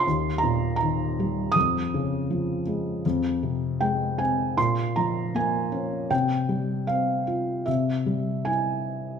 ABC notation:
X:1
M:4/4
L:1/8
Q:1/4=79
K:Cphr
V:1 name="Felt piano"
c' b b2 e'3 z | z2 g a c' b a2 | g2 f2 =e2 a2 |]
V:2 name="Felt piano" clef=bass
E,, B,, E, G, F,, D, F, A, | F,, C, A, C B,, F, B, D | C, G, C F C, G, =E2 |]